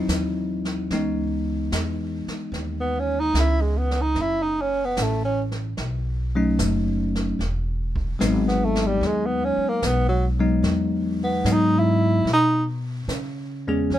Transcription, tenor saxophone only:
2.80 B3
2.99 C#4
3.20 D#4
3.40 E4
3.61 G#3
3.78 B3
4.02 D#4
4.21 E4
4.43 D#4
4.61 C#4
4.84 B3
5.02 A3
5.25 C#4
8.48 B3
8.64 A3
8.87 G3
9.06 G#3
9.26 B3
9.44 C#4
9.69 A#3
9.87 B3
10.08 F#3
11.24 B3
11.52 D#4
11.79 E4
12.33 D#4
13.94 C#4

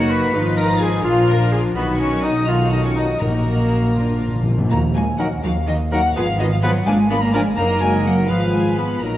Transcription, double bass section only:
Already playing: F#1
0.34 G#1
1.04 A#1
1.76 B1
3.21 A#1
4.71 D#2
5.44 D#2
6.16 G#1
6.87 G#1
7.57 F#1
8.28 G#1
9.02 A#1

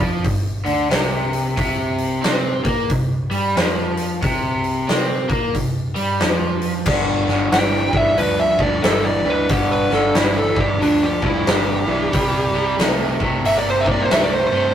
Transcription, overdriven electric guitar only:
0.00 F3
0.23 G2
0.65 D3
0.90 C3
1.57 C3
2.22 C4
2.64 A#3
2.90 C3
3.31 G3
3.56 F3
4.22 C3
4.88 C4
5.29 A#3
5.54 C3
5.95 G3
6.20 F3
6.86 G2 D3
7.27 G2 D3
7.52 G2 E3
7.92 G2 E3
8.17 G2 F3
8.58 G2 F3
8.83 G2 E3
9.24 G2 E3
9.49 G2 D3
9.90 G2 D3
10.15 G2 E3
10.55 G2 E3
10.80 G2 F3
11.21 G2 F3
11.46 G2 E3
11.87 G2 E3
12.12 C3 G3
12.54 C3 G3
12.79 C3 A3
13.20 C3 A3
13.44 C3 A#3
13.85 C3 A#3
14.10 C3 A3
14.51 C3 A3

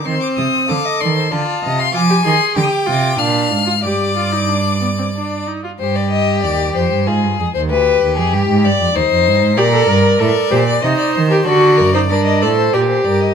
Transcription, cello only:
0.06 D#3
0.38 C3
0.70 D3
1.02 D#3
1.33 D3
1.64 C3
1.95 F3
2.26 D#3
2.57 D3
2.88 C3
3.20 A#2
3.52 G#2
3.85 G2
5.80 G2
6.44 D#2
6.76 F2
6.92 G2
7.09 G#2
7.24 G2
7.40 F2
7.56 D#2
7.72 D2
8.03 D#2
8.18 F2
8.33 G2
8.49 G#2
8.65 G2
8.81 F2
8.97 D#2
9.11 F2
9.27 G2
9.42 G#2
9.58 A#2
9.89 G2
10.20 A2
10.52 A#2
10.83 C3
11.16 D#3
11.47 D3
11.79 F#2
12.11 G2
12.43 A2
12.75 A#2
13.07 G2

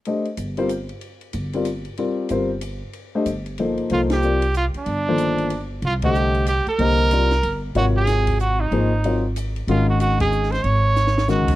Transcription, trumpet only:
3.93 F4
4.12 G4
4.57 F4
4.78 D4
5.85 F4
6.05 G4
6.48 G4
6.69 A#4
7.77 F#4
7.97 G#4
8.41 F#4
8.60 D#4
9.70 F4
9.90 F#4
10.01 F#4
10.21 G#4
10.51 C5
10.63 C#5
11.30 F#4

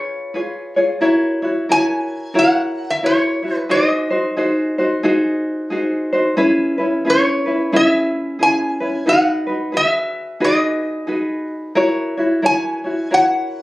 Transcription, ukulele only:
Already playing: F4 G#4 B4 C#5
0.34 F4 G#4 B4 C#5
0.76 F4 G#4 C#5
1.01 E4 F#4 A#4 C#5
1.42 E4 F#4 C#5
1.69 E4 F#4 A#4 C#5
2.34 E4 F#4 A#4 C#5
3.03 E4 F#4 A#4 C#5
3.42 E4 F#4 C#5
3.69 D#4 F#4 G#4 C5
4.10 D#4 F#4 C5
4.37 D#4 F#4 G#4 C5
4.78 D#4 F#4 C5
5.03 D#4 F#4 G#4 C5
5.70 D#4 F#4 G#4 C5
6.13 D#4 F#4 C5
6.37 C#4 E4 G#4 B4
6.78 C#4 E4 B4
7.05 C#4 E4 G#4 B4
7.46 C#4 E4 B4
7.72 C#4 E4 G#4 B4
8.39 C#4 E4 G#4 B4
8.80 C#4 E4 B4
9.06 D#4 F#4 G#4 B4
9.47 D#4 F#4 B4
9.72 F#4 G#4 B4
10.40 D#4 F#4 G#4 B4
11.07 D#4 F#4 G#4 B4
11.75 E4 F#4 A#4 C#5
12.17 E4 F#4 C#5
12.42 E4 F#4 A#4 C#5
12.84 E4 F#4 C#5
13.11 E4 F#4 A#4 C#5

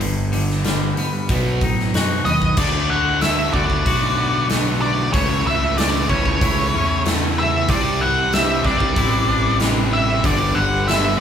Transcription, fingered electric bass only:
Already playing: G1
1.29 B1
1.62 A2
1.93 F#2
2.26 D#2
2.57 D2
3.54 D2
3.70 D2
3.86 B1
5.14 C#2
5.46 C#2
6.10 C#2
6.26 C#2
6.41 C#2
6.73 E2
7.69 C2
8.65 C2
8.81 C2
8.97 A1
10.25 G1
10.56 G1

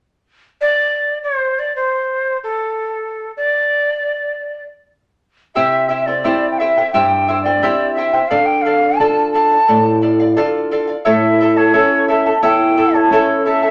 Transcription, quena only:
0.61 D5
1.24 C5
1.59 D5
1.76 C5
2.44 A4
3.37 D5
5.55 E5
6.01 E5
6.06 D5
6.51 G5
6.58 E5
6.92 G5
7.43 D5
7.93 E5
8.28 F5
8.46 G5
8.62 F5
8.98 A5
9.32 A5
11.06 E5
11.57 C#5
12.10 E5
12.43 G5
12.95 C#5
13.47 E5

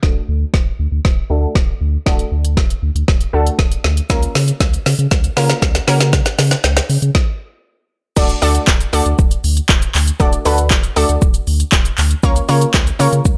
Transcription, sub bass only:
0.03 D1
0.28 D2
0.54 D1
0.79 D2
0.92 D2
1.05 D1
1.30 D2
1.55 D1
1.81 D2
2.06 D1
2.32 D2
2.57 D1
2.82 D2
2.95 D2
3.08 D1
3.34 D2
3.59 D1
3.84 D2
4.10 C#2
4.35 C#3
4.60 C#2
4.86 C#3
4.99 C#3
5.12 C#2
5.37 C#3
5.62 C#2
5.88 C#3
6.39 C#3
6.64 C#2
6.89 C#3
7.02 C#3
8.17 D1
8.42 D2
8.67 D1
8.93 D2
9.06 D2
9.19 D1
9.44 D2
9.69 D1
9.95 D2
10.20 D1
10.46 D2
10.71 D1
10.97 D2
11.09 D2
11.22 D1
11.47 D2
11.72 D1
11.98 D2
12.23 C#2
12.49 C#3
12.74 C#2
13.00 C#3
13.13 C#3
13.25 C#2

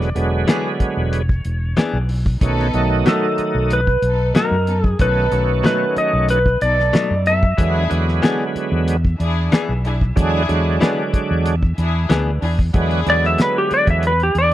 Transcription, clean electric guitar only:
0.48 E3 B3 D4 G#4
1.77 E3 B3 D4 G#4
3.06 B2 F#3 A3 D#4
4.35 B2 F#3 A3 D#4
5.64 B2 F#3 A3 D#4
6.93 B2 F#3 A3 D#4
8.23 E3 B3 D4 G#4
9.52 E3 B3 D4 G#4
10.81 E3 B3 D4 G#4
12.10 E3 B3 D4 G#4

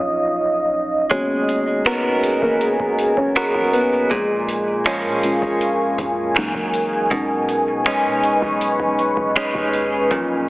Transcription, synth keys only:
Already playing: F#3 C#4 F4
1.11 A#3 B3 C#4 F#4 C#5
1.86 B3 B4
2.42 A#3 A#4
3.17 C#4 C#5
3.73 B3 B4
4.11 G#3 G#4
5.24 G#3 C#4 F4
6.36 E3 G#3 A#3 D#4
7.11 G#3 C#4 D#4
10.11 F#3 C#4 F4

